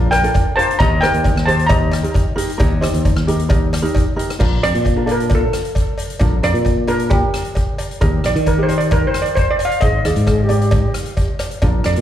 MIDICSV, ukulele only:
0, 0, Header, 1, 2, 480
1, 0, Start_track
1, 0, Key_signature, -2, "major"
1, 0, Tempo, 451128
1, 848, Time_signature, 4, 2, 24, 8
1, 12780, End_track
2, 0, Start_track
2, 0, Title_t, "Ukulele"
2, 0, Program_c, 0, 24
2, 0, Note_on_c, 0, 62, 88
2, 0, Note_on_c, 0, 65, 81
2, 0, Note_on_c, 0, 70, 85
2, 111, Note_off_c, 0, 62, 0
2, 112, Note_off_c, 0, 65, 0
2, 113, Note_off_c, 0, 70, 0
2, 245, Note_on_c, 0, 65, 67
2, 251, Note_on_c, 0, 62, 73
2, 251, Note_on_c, 0, 69, 71
2, 464, Note_off_c, 0, 65, 0
2, 465, Note_off_c, 0, 69, 0
2, 466, Note_off_c, 0, 62, 0
2, 610, Note_on_c, 0, 70, 83
2, 616, Note_on_c, 0, 65, 64
2, 622, Note_on_c, 0, 62, 59
2, 755, Note_off_c, 0, 70, 0
2, 756, Note_off_c, 0, 62, 0
2, 756, Note_off_c, 0, 65, 0
2, 854, Note_on_c, 0, 63, 85
2, 857, Note_on_c, 0, 67, 57
2, 862, Note_on_c, 0, 70, 87
2, 995, Note_off_c, 0, 67, 0
2, 997, Note_off_c, 0, 63, 0
2, 1000, Note_off_c, 0, 70, 0
2, 1097, Note_on_c, 0, 72, 85
2, 1103, Note_on_c, 0, 67, 62
2, 1106, Note_on_c, 0, 63, 63
2, 1382, Note_off_c, 0, 72, 0
2, 1383, Note_off_c, 0, 63, 0
2, 1383, Note_off_c, 0, 67, 0
2, 1562, Note_on_c, 0, 72, 92
2, 1568, Note_on_c, 0, 67, 69
2, 1570, Note_on_c, 0, 63, 69
2, 1710, Note_off_c, 0, 63, 0
2, 1711, Note_off_c, 0, 72, 0
2, 1712, Note_off_c, 0, 67, 0
2, 1809, Note_on_c, 0, 63, 75
2, 1815, Note_on_c, 0, 67, 63
2, 1820, Note_on_c, 0, 72, 70
2, 2025, Note_off_c, 0, 72, 0
2, 2026, Note_off_c, 0, 63, 0
2, 2026, Note_off_c, 0, 67, 0
2, 2161, Note_on_c, 0, 70, 80
2, 2167, Note_on_c, 0, 67, 68
2, 2168, Note_on_c, 0, 63, 69
2, 2381, Note_off_c, 0, 70, 0
2, 2382, Note_off_c, 0, 63, 0
2, 2383, Note_off_c, 0, 67, 0
2, 2507, Note_on_c, 0, 70, 100
2, 2512, Note_on_c, 0, 63, 85
2, 2513, Note_on_c, 0, 67, 77
2, 2663, Note_off_c, 0, 63, 0
2, 2663, Note_off_c, 0, 70, 0
2, 2665, Note_off_c, 0, 67, 0
2, 2743, Note_on_c, 0, 70, 97
2, 2748, Note_on_c, 0, 63, 85
2, 2754, Note_on_c, 0, 67, 78
2, 2901, Note_off_c, 0, 70, 0
2, 2902, Note_off_c, 0, 63, 0
2, 2902, Note_off_c, 0, 67, 0
2, 2990, Note_on_c, 0, 72, 91
2, 2992, Note_on_c, 0, 67, 70
2, 2994, Note_on_c, 0, 63, 77
2, 3286, Note_off_c, 0, 63, 0
2, 3287, Note_off_c, 0, 67, 0
2, 3288, Note_off_c, 0, 72, 0
2, 3481, Note_on_c, 0, 67, 77
2, 3485, Note_on_c, 0, 63, 85
2, 3490, Note_on_c, 0, 70, 97
2, 3629, Note_off_c, 0, 63, 0
2, 3630, Note_off_c, 0, 67, 0
2, 3630, Note_off_c, 0, 70, 0
2, 3713, Note_on_c, 0, 70, 100
2, 3718, Note_on_c, 0, 63, 83
2, 3723, Note_on_c, 0, 67, 69
2, 3936, Note_off_c, 0, 70, 0
2, 3939, Note_off_c, 0, 63, 0
2, 3939, Note_off_c, 0, 67, 0
2, 4068, Note_on_c, 0, 70, 90
2, 4072, Note_on_c, 0, 67, 74
2, 4073, Note_on_c, 0, 63, 92
2, 4294, Note_off_c, 0, 67, 0
2, 4294, Note_off_c, 0, 70, 0
2, 4296, Note_off_c, 0, 63, 0
2, 4427, Note_on_c, 0, 63, 80
2, 4433, Note_on_c, 0, 67, 69
2, 4433, Note_on_c, 0, 70, 95
2, 4582, Note_off_c, 0, 63, 0
2, 4582, Note_off_c, 0, 67, 0
2, 4584, Note_off_c, 0, 70, 0
2, 4668, Note_on_c, 0, 65, 73
2, 4673, Note_on_c, 0, 70, 82
2, 4674, Note_on_c, 0, 62, 77
2, 5038, Note_off_c, 0, 70, 0
2, 5039, Note_off_c, 0, 65, 0
2, 5041, Note_off_c, 0, 62, 0
2, 5275, Note_on_c, 0, 62, 65
2, 5281, Note_on_c, 0, 65, 58
2, 5283, Note_on_c, 0, 70, 78
2, 5353, Note_off_c, 0, 62, 0
2, 5354, Note_off_c, 0, 65, 0
2, 5356, Note_off_c, 0, 70, 0
2, 5383, Note_on_c, 0, 69, 80
2, 5388, Note_on_c, 0, 65, 62
2, 5391, Note_on_c, 0, 62, 67
2, 5972, Note_off_c, 0, 62, 0
2, 5973, Note_off_c, 0, 65, 0
2, 5974, Note_off_c, 0, 69, 0
2, 6596, Note_on_c, 0, 62, 87
2, 6598, Note_on_c, 0, 65, 70
2, 6606, Note_on_c, 0, 70, 80
2, 6747, Note_off_c, 0, 65, 0
2, 6748, Note_off_c, 0, 62, 0
2, 6748, Note_off_c, 0, 70, 0
2, 6838, Note_on_c, 0, 70, 66
2, 6844, Note_on_c, 0, 65, 59
2, 6850, Note_on_c, 0, 62, 62
2, 7133, Note_off_c, 0, 62, 0
2, 7133, Note_off_c, 0, 65, 0
2, 7133, Note_off_c, 0, 70, 0
2, 7314, Note_on_c, 0, 62, 68
2, 7320, Note_on_c, 0, 65, 68
2, 7325, Note_on_c, 0, 70, 75
2, 7898, Note_off_c, 0, 62, 0
2, 7901, Note_off_c, 0, 70, 0
2, 7902, Note_off_c, 0, 65, 0
2, 8522, Note_on_c, 0, 70, 104
2, 8528, Note_on_c, 0, 63, 82
2, 8533, Note_on_c, 0, 67, 71
2, 8888, Note_off_c, 0, 63, 0
2, 8888, Note_off_c, 0, 67, 0
2, 8888, Note_off_c, 0, 70, 0
2, 9128, Note_on_c, 0, 67, 66
2, 9133, Note_on_c, 0, 63, 63
2, 9140, Note_on_c, 0, 70, 66
2, 9201, Note_off_c, 0, 67, 0
2, 9202, Note_off_c, 0, 63, 0
2, 9203, Note_off_c, 0, 70, 0
2, 9240, Note_on_c, 0, 67, 69
2, 9243, Note_on_c, 0, 70, 78
2, 9247, Note_on_c, 0, 63, 66
2, 9821, Note_off_c, 0, 67, 0
2, 9823, Note_off_c, 0, 63, 0
2, 9823, Note_off_c, 0, 70, 0
2, 10451, Note_on_c, 0, 68, 62
2, 10453, Note_on_c, 0, 72, 69
2, 10454, Note_on_c, 0, 63, 68
2, 10594, Note_off_c, 0, 72, 0
2, 10595, Note_off_c, 0, 68, 0
2, 10596, Note_off_c, 0, 63, 0
2, 10689, Note_on_c, 0, 63, 69
2, 10694, Note_on_c, 0, 68, 57
2, 10697, Note_on_c, 0, 74, 75
2, 10978, Note_off_c, 0, 63, 0
2, 10978, Note_off_c, 0, 68, 0
2, 10981, Note_off_c, 0, 74, 0
2, 11156, Note_on_c, 0, 74, 88
2, 11164, Note_on_c, 0, 67, 67
2, 11169, Note_on_c, 0, 63, 76
2, 11742, Note_off_c, 0, 63, 0
2, 11742, Note_off_c, 0, 67, 0
2, 11742, Note_off_c, 0, 74, 0
2, 12371, Note_on_c, 0, 62, 89
2, 12375, Note_on_c, 0, 65, 78
2, 12379, Note_on_c, 0, 70, 78
2, 12731, Note_off_c, 0, 70, 0
2, 12732, Note_off_c, 0, 62, 0
2, 12732, Note_off_c, 0, 65, 0
2, 12780, End_track
0, 0, End_of_file